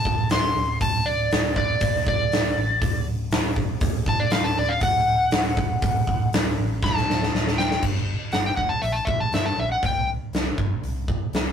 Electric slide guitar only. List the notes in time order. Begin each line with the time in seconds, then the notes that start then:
Already playing: A5
0.32 C6
0.82 A5
1.06 D5
1.57 D5
2.09 D5
4.09 A5
4.20 D5
4.32 F5
4.44 A5
4.59 D5
4.69 F5
4.83 F#5
6.84 B5
6.96 A5
7.58 G5
8.33 F#5
8.46 G5
8.56 F#5
8.69 A5
8.82 E5
8.92 A5
9.05 E5
9.20 A5
9.34 E5
9.46 A5
9.60 E5
9.72 F#5
9.86 G5